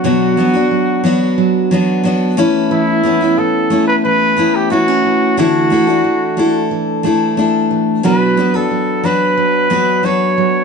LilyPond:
<<
  \new Staff \with { instrumentName = "Trumpet" } { \time 4/4 \key b \minor \tempo 4 = 90 fis'2 r2 | e'4 a'8. b'16 b'8. g'16 fis'4 | fis'2 r2 | b'8. a'8. b'4. cis''4 | }
  \new Staff \with { instrumentName = "Steel-string acoustic guitar" } { \time 4/4 \key b \minor <b, fis b d' fis'>8 <fis b d' fis'>16 <b d' fis'>8. <fis b d' fis'>4 <fis b d' fis'>8 <fis b d' fis'>8 <a cis' e' b'>8~ | <a cis' e' b'>8 <a cis' e' b'>16 <cis' e' b'>8. <a cis' e' b'>4 <a cis' e' b'>8 <a cis' e' b'>4 | <d a d' e' a'>8 <a d' e' a'>16 <d' e' a'>8. <a d' e' a'>4 <a d' e' a'>8 <a d' e' a'>4 | <b, fis d' fis' b'>8 <fis d' fis' b'>16 <d' fis' b'>8. <fis d' fis' b'>4 <fis d' fis' b'>8 <fis d' fis' b'>4 | }
  \new Staff \with { instrumentName = "Steel-string acoustic guitar" } { \time 4/4 \key b \minor <fis b d'>8 b8 fis8 d'8 fis8 b8 d'8 e8 | e8 b8 e8 cis'8 e8 b8 b16 cis'16 e8 | e8 a8 e8 d'8 e8 a8 d'8 e8 | fis8 b8 fis8 d'8 fis8 b8 d'8 fis8 | }
>>